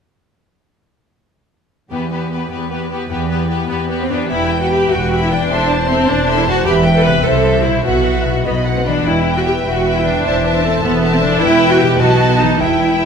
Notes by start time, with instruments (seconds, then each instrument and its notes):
1.91 harp E2, cello section E2, viola section B3, violin section G4 B4
2.11 harp B3, viola section B3, violin section G4 B4
2.31 viola section B3, violin section G4 B4, harp B4
2.51 cello section E2, viola section B3, violin section G4 B4, harp G5
2.70 viola section B3, violin section G4 B4, harp B4
2.90 viola section B3, harp G4, violin section G4 B4
3.09 harp E2, cello section E2, viola section B3, violin section G4 B4
3.29 viola section B3, harp B3, violin section G4 B4
3.49 viola section B3, violin section G4 B4, harp B4
3.68 cello section E2, viola section B3, violin section G4 B4, harp G5
3.89 viola section B3, violin section G4 B4, harp B4
4.00 viola section C4
4.09 harp E2 G4, viola section B3 D4, violin section G4 B4
4.17 harp B3
4.21 harp G4
4.26 harp B4
4.30 double bass section E1, cello section E2, viola section E4, violin section G4 E5 B5, clarinet B4, flute G5
4.50 violin section B4 G5
4.61 viola section F#4
4.70 viola section G4, violin section G4 E5 B5
4.91 double bass section E1, cello section E2, viola section F#4, violin section B4 G5
5.10 violin section G4 E5 B5
5.21 viola section E4
5.30 harp E2, viola section D4, violin section B4 G5
5.37 harp C4
5.41 harp E4
5.46 harp A4, violin section C6
5.50 double bass section E1, cello section E2, violin section A4 E5, clarinet C5, flute A5
5.68 violin section C5 A5
5.88 viola section C4, violin section A4 E5 C6
6.08 double bass section E1, cello section E2, viola section D4, violin section C5 A5
6.26 violin section A4 E5 C6
6.38 viola section E4
6.46 harp E2, viola section F#4, violin section C5 A5
6.53 harp B3
6.57 harp E4
6.62 violin section G4 B5, viola section G4, harp B4
6.66 double bass section E1, cello section E2, clarinet B4, violin section E5, flute E5
6.85 violin section B4 G5
6.95 viola section A4
7.04 harp C3, violin section G4 E5 B5, viola section B4
7.11 harp C4
7.16 harp E4
7.20 double bass section C2, harp A4, viola section A4, violin section C5 E5
7.25 cello section C3, clarinet C5, flute E5
7.43 violin section A4 C5 E5
7.63 harp B2, viola section E4, violin section C5 E5
7.71 harp E4
7.76 harp F#4
7.80 harp B4
7.84 double bass section B1, cello section B2, viola section F#4, violin section F#4 E5 F#5, clarinet B4, flute E5
8.04 violin section B4 E5 F#5
8.25 harp B2, violin section F#4 E5 F#5
8.32 harp D#4
8.36 harp F#4
8.41 harp B4, violin section D#5
8.45 double bass section B1, cello section B2, viola section B3, violin section F#4 B5, clarinet B4, flute D#5
8.65 violin section B4 F#5
8.76 viola section C4
8.85 harp E3, viola section D4, violin section F#4 D#5 B5
8.92 harp E4
8.97 harp G4
9.01 harp B4
9.05 double bass section E1, cello section E2, viola section E4, clarinet B4, flute G5
9.25 violin section B4 E5 G5
9.37 viola section F#4
9.46 viola section G4
9.65 double bass section E1, cello section E2, viola section F#4, flute E5
9.85 violin section B4 E5 G5
9.96 viola section E4
10.05 harp E3, viola section D4
10.12 harp E4
10.16 harp A4
10.21 harp C5, violin section C5 E5
10.25 double bass section E1, cello section E2, clarinet C5, violin section A5
10.44 clarinet B4, violin section C5 E5 A5
10.64 viola section C4, clarinet A4
10.83 double bass section E1, cello section E2, viola section B3, clarinet A4, flute E5
11.02 violin section C5 E5 A5
11.13 viola section C4
11.22 harp E3, viola section D4
11.28 harp E4
11.32 harp G4
11.37 harp B4, violin section B4
11.41 double bass section E1, cello section E2, viola section E4, clarinet B4, violin section E5 G5, flute G5
11.71 viola section F#4
11.80 harp B2, viola section G4
11.87 harp D#4
11.91 harp A4
11.96 double bass section B1, viola section F#4, harp B4, violin section D#5
12.00 cello section B2, violin section B4 A5, clarinet D#5, flute A5
12.40 harp E3, viola section D#4
12.48 harp E4
12.52 harp G4
12.56 harp B4, flute G5
12.61 double bass section E1, cello section E2, viola section E4, violin section B4 E5 G5, clarinet E5